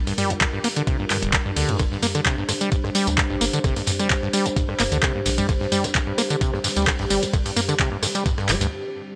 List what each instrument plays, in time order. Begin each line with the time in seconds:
Already playing: analog synth pad G3 D4 F4 A#4
0.07 acid bass G2, open hi-hat, ride
0.18 acid bass G3, mid tom, open hi-hat, ride
0.30 acid bass G1, closed hi-hat
0.41 acid bass G2, kick, snare, clap, closed hi-hat, ride
0.53 acid bass G2
0.64 acid bass A#3, open hi-hat, ride
0.76 acid bass D3, closed hi-hat
0.87 acid bass C3, kick, closed hi-hat, ride
1.00 acid bass G2
1.10 acid bass G2, clap, mid tom, open hi-hat, ride
1.22 sub bass D1, acid bass G1, closed hi-hat
1.33 acid bass C3, kick, snare, clap, closed hi-hat, ride
1.46 acid bass G2, sub bass G2
1.56 sub bass D2, acid bass D3, open hi-hat
1.69 acid bass G2, closed hi-hat, mid tom
1.79 sub bass G1, acid bass G2, analog synth pad G4 C5, kick, cross-stick, closed hi-hat, ride, tambourine
1.92 acid bass G2, snare
2.02 acid bass A#3, mid tom, open hi-hat, ride, tambourine
2.15 acid bass D3, cross-stick, snare, closed hi-hat, tambourine
2.25 acid bass C3, kick, snare, clap, closed hi-hat, ride, tambourine
2.38 acid bass G2
2.49 acid bass G2, cross-stick, open hi-hat, ride, tambourine
2.61 acid bass G3, closed hi-hat, tambourine
2.72 acid bass G2, kick, closed hi-hat, ride, tambourine
2.84 acid bass G2, cross-stick, snare
2.95 acid bass G3, open hi-hat, ride, tambourine
3.07 acid bass G1, sub bass D2, closed hi-hat, tambourine
3.18 acid bass G2, kick, cross-stick, snare, clap, closed hi-hat, ride, tambourine
3.30 sub bass A#1, acid bass G2
3.41 sub bass G1, acid bass A#3, open hi-hat, ride, tambourine
3.53 acid bass D3, closed hi-hat, ride, tambourine
3.64 sub bass G1, acid bass C3, kick, cross-stick, closed hi-hat, ride, tambourine
3.76 acid bass G2, open hi-hat, ride
3.86 acid bass G2, mid tom, open hi-hat, ride, tambourine
3.99 acid bass G3, cross-stick, closed hi-hat, tambourine
4.09 acid bass G2, kick, snare, clap, closed hi-hat, ride, tambourine
4.23 acid bass G2
4.33 acid bass G3, open hi-hat, ride, tambourine
4.46 acid bass G1, closed hi-hat, tambourine
4.56 sub bass G2, acid bass G2, kick, closed hi-hat, ride, tambourine
4.69 acid bass G2, cross-stick
4.79 sub bass F1, acid bass A#3, clap, mid tom, open hi-hat, ride, tambourine
4.92 sub bass D2, acid bass D3, closed hi-hat, tambourine
5.02 acid bass C3, kick, cross-stick, snare, clap, closed hi-hat, ride, tambourine
5.15 sub bass G2, acid bass G2
5.25 sub bass A#1, acid bass G2, open hi-hat, tambourine
5.38 acid bass G3, closed hi-hat, mid tom, tambourine
5.49 sub bass G1, acid bass G2, kick, cross-stick, closed hi-hat, ride, tambourine
5.61 acid bass G2, snare
5.72 acid bass G3, mid tom, open hi-hat, ride, tambourine
5.84 acid bass G1, cross-stick, snare, closed hi-hat, tambourine
5.95 acid bass G2, kick, snare, clap, closed hi-hat, ride, tambourine
6.07 acid bass G2
6.18 acid bass A#3, cross-stick, open hi-hat, ride, tambourine
6.30 acid bass D3, closed hi-hat, tambourine
6.41 acid bass C3, kick, closed hi-hat, ride, tambourine
6.53 acid bass G2, cross-stick, snare
6.64 acid bass G2, snare, open hi-hat, ride, tambourine
6.70 snare, ride
6.76 sub bass D2, acid bass G3, snare, closed hi-hat, ride, tambourine
6.82 snare, ride
6.87 acid bass G2, kick, cross-stick, clap, closed hi-hat, open hi-hat, tambourine
6.99 sub bass A#1, acid bass G2, snare, ride
7.10 sub bass G1, acid bass G3, open hi-hat, tambourine
7.23 acid bass G1, closed hi-hat, open hi-hat, tambourine
7.33 sub bass G1, acid bass G2, kick, cross-stick, closed hi-hat, ride, tambourine
7.46 acid bass G2, open hi-hat, ride
7.56 acid bass A#3, mid tom, open hi-hat, ride, tambourine
7.69 acid bass D3, cross-stick, closed hi-hat, tambourine
7.79 acid bass C3, kick, snare, clap, closed hi-hat, ride, tambourine
7.92 acid bass G2
8.03 acid bass G2, cross-stick, snare, open hi-hat, ride, tambourine
8.15 acid bass G3, snare, closed hi-hat, ride, tambourine
8.26 acid bass G2, sub bass G2, kick, snare, closed hi-hat, ride, tambourine
8.38 acid bass G2, cross-stick, snare, ride
8.49 sub bass F1, acid bass G3, snare, clap, mid tom, open hi-hat, ride, tambourine
8.61 sub bass D2, acid bass G2, snare, closed hi-hat, ride, tambourine